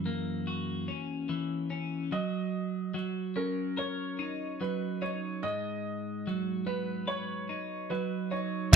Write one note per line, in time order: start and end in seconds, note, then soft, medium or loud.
0.00 0.88 F#2 soft
0.00 1.28 E3 soft
0.06 2.12 A#3 soft
0.47 3.77 F#4 soft
0.88 1.69 C#4 soft
1.29 2.12 E3 soft
1.70 2.12 C#4 soft
2.12 2.93 F#3 soft
2.12 2.95 D#5 medium
2.94 4.59 F#3 soft
3.36 5.43 C#4 soft
3.36 3.78 A#4 soft
3.77 5.43 A#4 medium
3.77 4.61 C#5 medium
4.19 5.01 D#4 soft
4.61 5.43 F#3 soft
4.61 5.02 B4 medium
5.02 5.43 D#4 soft
5.02 5.43 C#5 medium
5.43 7.50 G#2 soft
5.43 6.26 D#5 medium
6.27 7.90 F#3 soft
6.66 8.73 B3 soft
6.66 7.08 B4 medium
7.08 8.73 B4 medium
7.08 7.91 C#5 medium
7.49 8.30 D#4 soft
7.90 8.73 F#3 soft
7.90 8.32 B4 medium
8.31 8.73 D#4 soft
8.31 8.73 C#5 medium
8.73 8.76 E5 medium